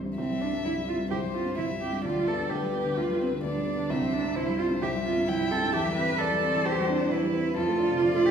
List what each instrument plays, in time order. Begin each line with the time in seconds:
Already playing: grand piano C2 G2 G3 C4
0.06 grand piano G2
0.17 grand piano C2, cello C4, violin E5
0.30 grand piano G3
0.41 grand piano C4, cello D4
0.53 grand piano G2
0.65 grand piano C2, cello E4
0.77 grand piano G3
0.88 grand piano C4, cello F4
1.00 grand piano G2
1.11 grand piano C2, cello G4, violin C5
1.23 grand piano G3
1.34 grand piano C4, cello F4
1.46 grand piano G2
1.57 grand piano C2, cello E4, violin E5
1.69 grand piano G3
1.81 grand piano C4, cello G4
1.93 grand piano G2
2.05 grand piano D2, cello F4, violin D5
2.16 grand piano G3
2.28 grand piano B3, cello A4
2.39 grand piano D3
2.50 grand piano D2, cello G4, violin B4
2.63 grand piano G3
2.74 grand piano B3
2.86 grand piano D3
2.97 grand piano D2, cello F4
3.09 grand piano G3
3.21 grand piano B3, cello C4
3.32 grand piano D3
3.44 grand piano D2, cello D4, violin D5
3.55 grand piano G3
3.67 grand piano B3
3.79 grand piano D3
3.90 grand piano C2, cello C4, violin E5
4.01 grand piano G3
4.13 grand piano C4, cello D4
4.24 grand piano G2
4.35 grand piano C2, cello E4, violin C5
4.48 grand piano G3
4.58 grand piano C4, cello F4
4.71 grand piano G2
4.82 grand piano C2, cello G4, violin E5
4.94 grand piano G3
5.05 grand piano C4, cello F4
5.18 grand piano G2
5.28 grand piano C2, cello E4, violin G5
5.41 grand piano G3
5.51 grand piano C4, cello A4
5.64 grand piano G2
5.73 grand piano E2, cello G4, violin E5
5.86 grand piano G3
5.96 grand piano C4, cello B4
6.09 grand piano E3
6.19 grand piano E2, cello A4, violin D5
6.32 grand piano G3
6.44 grand piano C4
6.55 grand piano E3
6.66 grand piano E2, cello G4, violin C5
6.78 grand piano G3
6.88 grand piano C4, cello D4
7.00 grand piano E3
7.11 grand piano E2, cello E4, violin B4
7.23 grand piano G3
7.34 grand piano C4
7.46 grand piano E3
7.57 grand piano F2, cello F4, violin A4
7.68 grand piano A3
7.80 grand piano D4
7.91 grand piano C3
8.03 grand piano F2, violin D5
8.14 grand piano A3
8.26 grand piano D4, cello G4